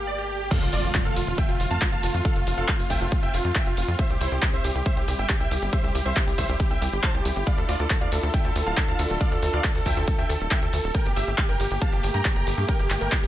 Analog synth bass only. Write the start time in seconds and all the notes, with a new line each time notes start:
Already playing: G1
0.62 F1
0.73 F1
0.84 F1
1.05 F1
1.16 F1
1.27 F1
1.49 F1
1.60 F1
1.71 F2
1.93 F1
2.03 F1
2.14 F2
2.36 F1
2.47 F1
2.58 F1
2.79 F1
2.90 F1
3.01 F1
3.23 F1
3.34 F1
3.44 F2
3.66 F1
3.77 F1
3.88 F2
4.10 C2
4.21 C2
4.31 C2
4.53 C2
4.64 C2
4.75 C2
4.97 C2
5.08 C2
5.19 G1
5.40 C2
5.51 C2
5.62 G1
5.84 C2
5.95 C2
6.05 C2
6.27 C2
6.38 C2
6.49 C2
6.71 C2
6.82 C2
6.93 G1
7.14 C2
7.25 C2
7.36 G1
7.58 D2
7.69 D2
7.79 D2
8.01 D2
8.12 D2
8.23 D2
8.45 D2
8.55 D2
8.66 D1
8.88 D2
8.99 D2
9.10 D1
9.32 D2
9.42 D2
9.53 D2
9.75 D2
9.86 D2
9.97 D2
10.19 D2
10.29 D2
10.40 D1
10.62 D2
10.73 D2
10.84 D1
11.06 G1
11.16 G1
11.27 G1
11.49 G1
11.60 G1
11.71 G1
11.92 G1
12.03 G1
12.14 G2
12.36 G1
12.47 G1
12.58 G2
12.79 G1
12.90 G1
13.01 G1
13.23 G1